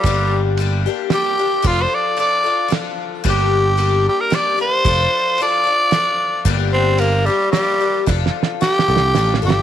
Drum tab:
RD |x--x--x--|x--x--x--|x--x--x--|x--x--x--|
SD |------o--|------o--|------o--|------o--|
BD |o--------|o--------|o--------|o--------|

RD |x--x--x--|---------|
SD |------o--|ooooooooo|
BD |o--------|o--------|